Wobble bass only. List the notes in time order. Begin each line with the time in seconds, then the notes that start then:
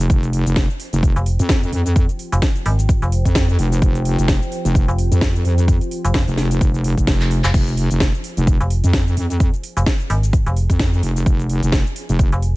0.10 F1
0.46 F1
0.93 F1
1.39 F2
1.73 F2
3.25 F2
3.59 F1
3.82 F1
4.18 F1
4.65 F1
5.12 F2
5.45 F2
6.28 F1
6.61 F1
6.98 F1
7.54 F1
7.91 F1
8.37 F1
8.84 F2
9.17 F2
10.70 F2
11.03 F1
11.26 F1
11.63 F1
12.09 F1